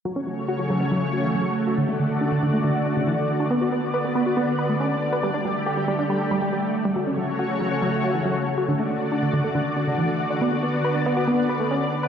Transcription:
0.05 analog synth pad C#3 A3 F#4 C#5, synth arpeggio sound F#3
0.16 synth arpeggio sound C#4
0.27 synth arpeggio sound F#3
0.48 synth arpeggio sound F#4
0.59 synth arpeggio sound F#3
0.70 synth arpeggio sound F#3
0.81 synth arpeggio sound C#4
0.92 synth arpeggio sound F#3
1.13 synth arpeggio sound F#4
1.24 synth arpeggio sound E3
1.35 synth arpeggio sound F#3
1.67 synth arpeggio sound F#4
1.78 synth arpeggio sound D3, analog synth pad D3 D5
1.89 synth arpeggio sound A3
2.00 synth arpeggio sound D3
2.21 synth arpeggio sound D4
2.32 synth arpeggio sound D3
2.43 synth arpeggio sound D3
2.53 synth arpeggio sound A3
2.64 synth arpeggio sound D3
2.86 synth arpeggio sound D4
2.97 synth arpeggio sound C#3
3.07 synth arpeggio sound E3
3.40 synth arpeggio sound D4
3.51 analog synth pad B3, synth arpeggio sound B3
3.61 synth arpeggio sound F#4
3.72 synth arpeggio sound B3
3.94 synth arpeggio sound B4
4.05 synth arpeggio sound B3
4.15 synth arpeggio sound B3
4.26 synth arpeggio sound F#4
4.37 synth arpeggio sound B3
4.59 synth arpeggio sound B4
4.69 synth arpeggio sound A3
4.80 synth arpeggio sound C#4
5.13 synth arpeggio sound B4
5.23 synth arpeggio sound G3, analog synth pad A3 G4
5.34 synth arpeggio sound D4
5.45 synth arpeggio sound G3
5.66 synth arpeggio sound G4
5.77 synth arpeggio sound G3
5.88 synth arpeggio sound G3
5.99 synth arpeggio sound D4
6.10 synth arpeggio sound G3
6.31 synth arpeggio sound G3
6.42 synth arpeggio sound G3
6.53 synth arpeggio sound G3
6.85 synth arpeggio sound G3
6.96 analog synth pad C#3 F#4 C#5, synth arpeggio sound F#3
7.07 synth arpeggio sound C#4
7.18 synth arpeggio sound F#3
7.39 synth arpeggio sound F#4
7.50 synth arpeggio sound F#3
7.61 synth arpeggio sound F#3
7.71 synth arpeggio sound C#4
7.82 synth arpeggio sound F#3
8.04 synth arpeggio sound F#4
8.15 synth arpeggio sound E3
8.25 synth arpeggio sound F#3
8.58 synth arpeggio sound F#4
8.69 analog synth pad D3 F#4 D5, synth arpeggio sound D3
8.79 synth arpeggio sound A3
8.90 synth arpeggio sound D3
9.12 synth arpeggio sound D4
9.23 synth arpeggio sound D3
9.33 synth arpeggio sound D3
9.44 synth arpeggio sound A3
9.55 synth arpeggio sound D3
9.77 synth arpeggio sound D4
9.87 synth arpeggio sound C#3
9.98 synth arpeggio sound E3
10.30 synth arpeggio sound D4
10.41 analog synth pad B3, synth arpeggio sound B3
10.52 synth arpeggio sound F#4
10.63 synth arpeggio sound B3
10.84 synth arpeggio sound B4
10.95 synth arpeggio sound B3
11.06 synth arpeggio sound B3
11.17 synth arpeggio sound F#4
11.28 synth arpeggio sound B3
11.49 synth arpeggio sound B4
11.60 synth arpeggio sound A3
11.71 synth arpeggio sound C#4
12.03 synth arpeggio sound B4

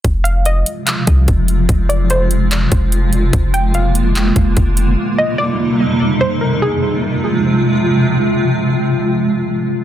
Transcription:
0.04 808-style bass F1, ambient pad C3 F3 G#3 F4, kick, closed hi-hat
0.24 synth pluck F5, closed hi-hat
0.45 synth pluck D#5, closed hi-hat
0.66 closed hi-hat
0.87 clap, closed hi-hat
1.07 808-style bass C2, kick, closed hi-hat
1.28 808-style bass F1, kick, closed hi-hat
1.48 closed hi-hat
1.69 808-style bass F1, kick, closed hi-hat
1.89 synth pluck D5, closed hi-hat
2.10 synth pluck C5, closed hi-hat
2.31 closed hi-hat
2.51 clap, closed hi-hat
2.72 808-style bass F1, kick, closed hi-hat
2.92 closed hi-hat
3.13 closed hi-hat
3.33 808-style bass F1, ambient pad D3 A#3, kick, closed hi-hat
3.54 synth pluck G5, closed hi-hat
3.74 synth pluck F5, closed hi-hat
3.95 closed hi-hat
4.16 clap, closed hi-hat
4.36 808-style bass F1, kick, closed hi-hat
4.57 808-style bass F1, kick, closed hi-hat
4.77 closed hi-hat
4.98 ambient pad F2 C3 G3 D#4
5.18 synth pluck D#5
5.38 synth pluck D5
6.21 synth pluck C5
6.41 synth pluck A#4
6.62 ambient pad C3 F3 G#3 F4, synth pluck G#4

